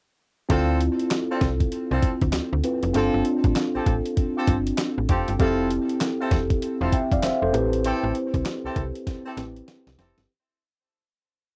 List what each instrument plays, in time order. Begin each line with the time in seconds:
0.49 fm bass D2, tine electric piano C4 E4 F4 A4, horn section C4 D4 F4 A4, kick, closed hi-hat
0.80 closed hi-hat
0.99 closed hi-hat
1.11 snare, clap, closed hi-hat
1.30 horn section C4 D4 F4 A4
1.41 fm bass C2, kick, snare, closed hi-hat
1.60 kick, closed hi-hat
1.72 closed hi-hat
1.91 fm bass C2, horn section C4 D4 F4 A4
2.03 kick, closed hi-hat
2.22 fm bass D2, kick, closed hi-hat
2.33 fm bass D2, snare, clap, closed hi-hat
2.53 fm bass D2
2.64 tine electric piano C4 E4 F4 B4, closed hi-hat
2.83 fm bass F1, closed hi-hat
2.94 fm bass G1, tine electric piano C4 D4 F4 A4, horn section C4 F4 G4 A4, closed hi-hat
3.14 fm bass G1
3.25 closed hi-hat
3.44 fm bass A1, kick, closed hi-hat
3.56 snare, clap, closed hi-hat
3.75 fm bass A1, horn section C4 F4 G4 A4
3.86 fm bass A1, kick, closed hi-hat
4.06 closed hi-hat
4.17 kick, closed hi-hat
4.36 horn section C4 F4 G4 A4
4.47 fm bass G1, kick, closed hi-hat
4.67 closed hi-hat
4.78 snare, clap, closed hi-hat
4.98 fm bass A1
5.09 fm bass F1, horn section C4 F4 G4 A4, kick, closed hi-hat
5.28 fm bass G1, closed hi-hat
5.39 fm bass F1, tine electric piano C4 E4 G4 A4, horn section C4 E4 F4 A4, kick, closed hi-hat
5.70 closed hi-hat
5.89 closed hi-hat
6.00 snare, clap, closed hi-hat
6.20 horn section C4 E4 F4 A4
6.31 fm bass E1, kick, snare, closed hi-hat
6.50 kick, closed hi-hat
6.62 closed hi-hat
6.81 fm bass E1, horn section C4 E4 F4 A4
6.92 tine electric piano E5 G5, kick, closed hi-hat
7.12 fm bass F1, tine electric piano D5 F5, kick, closed hi-hat
7.23 tine electric piano C5 E5, snare, clap, closed hi-hat
7.42 fm bass F1, tine electric piano A4 C5
7.53 fm bass A1, tine electric piano C4 E4 G4 B4, closed hi-hat
7.73 closed hi-hat
7.84 horn section C4 E4 G4 A4, closed hi-hat
8.04 fm bass A1
8.15 closed hi-hat
8.34 fm bass C2, kick, closed hi-hat
8.45 snare, clap, closed hi-hat
8.64 fm bass C2, horn section C4 E4 G4 A4
8.76 fm bass C2, kick, closed hi-hat
8.95 closed hi-hat
9.07 kick, snare, closed hi-hat
9.26 horn section C4 E4 G4 A4
9.37 fm bass A1, tine electric piano C4 E4 G4 B4, snare, closed hi-hat
9.56 closed hi-hat
9.68 snare, closed hi-hat
9.87 fm bass C2, snare
9.98 fm bass F1, horn section C4 E4 G4 A4, snare, closed hi-hat
10.18 fm bass G1, snare, closed hi-hat